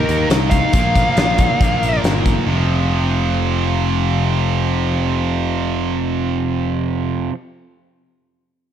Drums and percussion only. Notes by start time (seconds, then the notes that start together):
0.09 closed hi-hat
0.30 snare, closed hi-hat
0.51 kick, closed hi-hat
0.73 kick, closed hi-hat
0.95 kick, closed hi-hat
1.17 snare, closed hi-hat
1.38 kick, closed hi-hat
1.61 kick, closed hi-hat
1.83 closed hi-hat
2.04 snare, closed hi-hat
2.26 kick, closed hi-hat